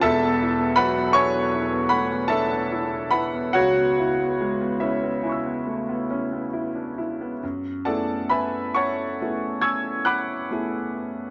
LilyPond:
<<
  \new Staff \with { instrumentName = "Grand piano" } { \time 9/8 \key fis \minor \tempo 4. = 47 << { r1 r8 | r2 <gis'' b'' cis''' e'''>2~ <gis'' b'' cis''' e'''>8 | r1 r8 | } \\ { <a' e'' a''>4 <b' fis'' b''>8 <cis'' gis'' cis'''>4 <b' fis'' b''>8 <a' e'' a''>4 <b' fis'' b''>8 | <fis' cis'' fis''>4. <e' b' e''>4. r4. | r8 <a' d'' fis'' a''>8 <b' e'' gis'' b''>8 <cis'' fis'' a'' cis'''>4 <gis'' cis''' e''' gis'''>8 <fis'' b'' d''' fis'''>4. | } >> }
  \new Staff \with { instrumentName = "Grand piano" } { \time 9/8 \key fis \minor <e,, e,>16 b16 e'16 b16 fis16 b16 d'16 b16 e'16 b16 a16 b16 d'16 b16 e'16 d'16 e'16 b16 | cis,16 b16 e'16 b16 gis16 b16 cis'16 b16 e'16 b16 a16 b16 cis'16 b16 e'16 d'16 e'16 b16 | fis,8 <a b e' gis'>4. <a b e' gis'>4. <a b e' gis'>4 | }
>>